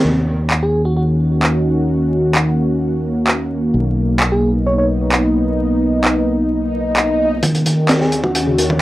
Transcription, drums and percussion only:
0.50 clap loud
1.43 clap loud
2.35 clap loud
3.27 clap loud
4.20 clap loud
5.12 clap loud
6.04 clap loud
6.97 clap loud
7.43 kick loud
7.43 closed hi-hat medium
7.55 closed hi-hat soft
7.66 closed hi-hat medium
7.89 snare loud
7.89 clap loud
7.89 closed hi-hat medium
8.01 snare soft
8.12 closed hi-hat medium
8.24 kick medium
8.35 closed hi-hat medium
8.58 closed hi-hat medium
8.70 kick medium

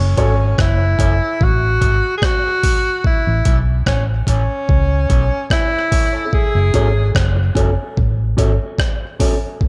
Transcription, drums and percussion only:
0.18 kick medium
0.18 closed hi-hat medium
0.58 kick loud
0.58 cross-stick loud
0.99 kick medium
0.99 closed hi-hat medium
1.41 kick loud
1.82 kick medium
1.82 closed hi-hat medium
2.22 kick loud
2.22 cross-stick loud
2.63 kick medium
2.63 open hi-hat medium
3.04 kick loud
3.45 kick medium
3.45 closed hi-hat medium
3.86 kick loud
3.86 cross-stick loud
4.27 kick medium
4.27 closed hi-hat medium
4.69 kick loud
5.10 kick medium
5.10 closed hi-hat medium
5.50 kick loud
5.50 cross-stick loud
5.92 kick medium
5.92 open hi-hat medium
6.33 kick medium
6.74 kick medium
6.74 closed hi-hat medium
7.15 kick loud
7.15 cross-stick loud
7.55 kick medium
7.55 closed hi-hat medium
7.97 kick loud
8.38 kick medium
8.38 closed hi-hat medium
8.79 kick medium
8.79 cross-stick loud
9.20 kick medium
9.20 open hi-hat medium
9.61 kick medium

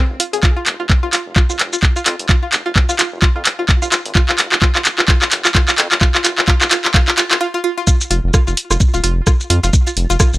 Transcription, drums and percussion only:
0.20 closed hi-hat loud
0.33 closed hi-hat soft
0.43 kick loud
0.43 clap medium
0.66 clap medium
0.66 closed hi-hat medium
0.90 kick loud
0.90 clap medium
1.13 clap medium
1.13 closed hi-hat medium
1.13 shaker soft
1.36 kick loud
1.36 clap medium
1.50 shaker soft
1.59 clap medium
1.59 closed hi-hat medium
1.73 shaker soft
1.83 kick loud
1.83 clap medium
1.96 shaker soft
2.06 clap medium
2.06 closed hi-hat medium
2.19 closed hi-hat soft
2.29 kick loud
2.29 clap medium
2.52 clap medium
2.52 closed hi-hat medium
2.52 shaker soft
2.76 kick loud
2.76 clap medium
2.89 shaker soft
2.99 clap medium
2.99 closed hi-hat medium
2.99 shaker soft
3.22 kick loud
3.22 clap medium
3.45 clap medium
3.45 closed hi-hat medium
3.69 kick loud
3.69 clap medium
3.82 shaker soft
3.92 clap medium
3.92 closed hi-hat medium
3.92 shaker soft
4.06 closed hi-hat soft
4.15 kick loud
4.15 clap loud
4.29 clap medium
4.38 clap medium
4.38 closed hi-hat medium
4.52 clap medium
4.62 kick loud
4.62 clap medium
4.75 clap medium
4.85 clap medium
4.85 closed hi-hat medium
4.85 shaker soft
4.98 clap medium
5.08 kick loud
5.08 clap loud
5.22 clap medium
5.22 shaker soft
5.32 clap loud
5.32 closed hi-hat medium
5.45 clap medium
5.45 shaker soft
5.55 kick loud
5.55 clap loud
5.68 clap medium
5.68 shaker soft
5.78 clap loud
5.78 closed hi-hat medium
5.92 clap medium
5.92 closed hi-hat soft
6.01 kick loud
6.01 clap loud
6.15 clap medium
6.25 clap loud
6.25 closed hi-hat medium
6.25 shaker soft
6.38 clap medium
6.48 kick loud
6.48 clap loud
6.61 clap medium
6.61 shaker soft
6.71 clap loud
6.71 closed hi-hat medium
6.71 shaker soft
6.85 clap loud
6.94 kick loud
6.94 clap loud
7.08 clap loud
7.18 clap loud
7.18 closed hi-hat medium
7.18 shaker soft
7.31 clap loud
7.31 closed hi-hat soft
7.87 kick loud
7.87 shaker medium
8.01 shaker soft
8.11 closed hi-hat medium
8.34 kick loud
8.34 cross-stick loud
8.34 shaker medium
8.47 shaker soft
8.57 closed hi-hat medium
8.71 cross-stick medium
8.71 shaker soft
8.80 kick loud
8.80 shaker medium
8.94 shaker soft
9.04 closed hi-hat loud
9.27 kick loud
9.27 cross-stick medium
9.27 shaker medium
9.40 shaker soft
9.50 closed hi-hat medium
9.64 closed hi-hat soft
9.64 shaker soft
9.73 kick loud
9.73 shaker medium
9.87 shaker soft
9.97 closed hi-hat medium
10.10 shaker soft
10.20 kick loud
10.20 cross-stick loud
10.20 shaker medium
10.34 shaker soft

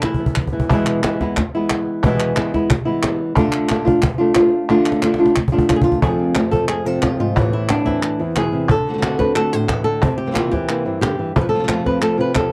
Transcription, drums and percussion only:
0.02 cajon slap medium
0.02 clap medium
0.14 cajon bass medium
0.26 cajon bass medium
0.35 cajon bass medium
0.35 clap medium
0.47 cajon bass medium
0.60 cajon bass medium
0.70 cajon bass medium
0.86 clap medium
1.03 cajon slap loud
1.03 clap medium
1.21 cajon bass medium
1.21 cajon slap soft
1.37 cajon bass medium
1.37 cajon slap soft
1.37 clap medium
1.70 cajon slap medium
1.70 clap medium
1.87 cajon slap soft
2.04 cajon bass medium
2.20 clap medium
2.36 cajon slap loud
2.36 clap medium
2.54 cajon bass medium
2.54 cajon slap soft
2.70 cajon bass medium
2.70 clap medium
3.03 cajon slap loud
3.03 clap medium
3.37 cajon bass medium
3.52 clap medium
3.69 cajon slap loud
3.69 clap medium
3.87 cajon bass medium
4.02 cajon bass medium
4.02 clap medium
4.35 cajon slap medium
4.35 clap medium
4.53 cajon slap soft
4.70 cajon slap medium
4.86 clap medium
4.92 cajon slap medium
5.02 cajon slap medium
5.02 clap medium
5.14 cajon slap medium
5.26 cajon slap medium
5.36 cajon bass medium
5.36 clap medium
5.48 cajon bass medium
5.58 cajon bass medium
5.69 cajon bass medium
5.69 clap medium
5.82 cajon bass medium
5.92 cajon bass medium
6.02 cajon bass medium
6.19 cajon slap soft
6.35 cajon slap loud
6.35 clap medium
6.53 cajon bass medium
6.68 clap medium
7.02 cajon bass medium
7.02 cajon slap medium
7.02 clap medium
7.37 cajon bass medium
7.53 cajon slap soft
7.69 cajon slap loud
7.69 clap medium
7.87 cajon bass medium
7.87 cajon slap soft
8.03 clap medium
8.36 cajon slap medium
8.36 clap medium
8.69 cajon bass medium
8.87 cajon slap soft
9.03 cajon slap loud
9.03 clap medium
9.20 cajon bass medium
9.20 cajon slap soft
9.36 clap medium
9.69 cajon bass medium
9.69 cajon slap loud
9.69 clap medium
10.03 cajon bass medium
10.20 cajon slap soft
10.36 cajon slap loud
10.36 clap medium
10.53 cajon bass medium
10.53 cajon slap soft
10.69 clap medium
10.87 cajon slap soft
11.03 cajon slap medium
11.03 clap medium
11.36 cajon bass medium
11.68 cajon slap medium
11.68 clap medium
11.86 cajon bass medium
11.86 cajon slap soft
12.02 clap medium
12.35 cajon bass medium
12.35 cajon slap medium
12.35 clap medium

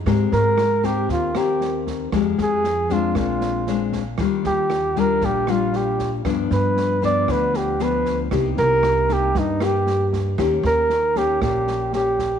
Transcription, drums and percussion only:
0.06 kick medium
0.06 cross-stick medium
0.06 snare soft
0.32 snare soft
0.58 cross-stick medium
0.58 snare soft
0.84 kick soft
0.84 snare soft
1.09 kick soft
1.09 snare soft
1.35 cross-stick medium
1.35 snare soft
1.61 snare soft
1.87 kick soft
1.87 snare soft
2.12 kick soft
2.12 cross-stick medium
2.12 snare soft
2.38 snare soft
2.64 snare soft
2.90 kick soft
2.90 snare soft
3.15 kick medium
3.15 cross-stick soft
3.15 snare soft
3.41 snare soft
3.67 snare soft
3.93 kick soft
3.93 snare soft
4.18 kick medium
4.18 cross-stick medium
4.18 snare soft
4.44 snare soft
4.70 cross-stick medium
4.70 snare soft
4.96 kick soft
4.96 snare soft
5.21 kick medium
5.21 snare soft
5.47 cross-stick medium
5.47 snare soft
5.73 snare soft
5.99 kick soft
5.99 snare soft
6.25 kick medium
6.25 cross-stick medium
6.25 snare soft
6.51 snare soft
6.77 snare soft
7.02 kick soft
7.02 snare soft
7.28 kick medium
7.28 cross-stick medium
7.28 snare soft
7.54 snare soft
7.79 snare soft
8.05 kick soft
8.05 snare soft
8.31 kick medium
8.31 cross-stick medium
8.31 snare soft
8.57 snare soft
8.83 cross-stick medium
8.83 snare soft
9.09 kick soft
9.09 snare soft
9.35 kick medium
9.35 snare soft
9.60 cross-stick medium
9.60 snare soft
9.87 snare soft
10.13 kick soft
10.13 snare soft
10.38 kick medium
10.38 cross-stick medium
10.38 snare soft
10.64 snare soft
10.90 snare soft
11.16 kick soft
11.16 snare soft
11.41 kick medium
11.41 cross-stick medium
11.41 snare soft
11.67 snare soft
11.93 snare soft
12.19 kick soft
12.19 snare soft

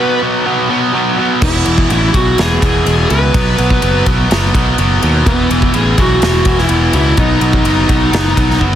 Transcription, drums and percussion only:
1.42 kick loud
1.42 crash loud
1.66 ride medium
1.78 kick medium
1.90 ride loud
2.14 kick medium
2.14 ride medium
2.38 snare loud
2.38 ride loud
2.62 kick medium
2.62 ride medium
2.86 ride loud
3.10 ride medium
3.34 kick loud
3.34 ride loud
3.58 ride medium
3.70 kick medium
3.82 ride loud
4.06 kick medium
4.06 ride medium
4.31 snare loud
4.31 ride loud
4.55 kick medium
4.55 ride medium
4.78 ride loud
5.03 ride medium
5.26 kick loud
5.26 ride loud
5.51 ride medium
5.62 kick medium
5.74 ride loud
5.98 kick medium
5.98 ride medium
6.22 snare loud
6.22 ride loud
6.45 kick medium
6.45 ride medium
6.58 snare soft
6.69 ride loud
6.93 ride medium
7.17 kick loud
7.17 ride loud
7.41 ride medium
7.53 kick medium
7.65 ride loud
7.89 kick medium
7.89 ride medium
8.13 snare loud
8.13 ride loud
8.37 kick medium
8.37 ride medium
8.50 snare soft
8.61 kick medium

